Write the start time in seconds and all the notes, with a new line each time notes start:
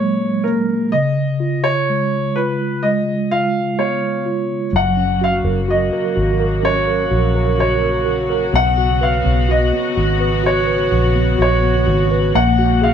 Already playing: A#2 F#3 A#3 C#4 C#5
0.00 G#3
0.44 A#3 A#4
0.92 C#3 D#5
1.40 F4
1.64 C#5
1.90 G#3
2.36 F4 B4
2.83 G#3 D#5
3.31 F4 F5
3.79 B3 C#5
4.26 F4
4.73 F#1 C#3 F#3 A#3 F#4 F#5
4.97 C#4
5.21 F#4 F5
5.44 F#1 A#4
5.68 F#4 D#5
5.93 A#4
6.16 G#1 F#4
6.40 A#4
6.63 C#4 C#5
6.87 A#4
7.11 A#1 F#4
7.35 A#4
7.58 F#4 C#5
7.82 A#4
8.06 F#4
8.30 A#4
8.53 B1 B3 F#5
8.77 F#4
9.01 B4 F5
9.25 B1 B3
9.49 F#4 D#5
9.73 B3
9.96 G#1 F#4
10.20 B4
10.43 F#4 C#5
10.67 B4
10.91 A#1 F#4
11.15 B3
11.38 A#1 F#4 C#5
11.63 B3
11.87 G#1 F#4
12.11 B4
12.35 A#1 G#3 A#3 F#5
12.59 F#4
12.82 G#4 F5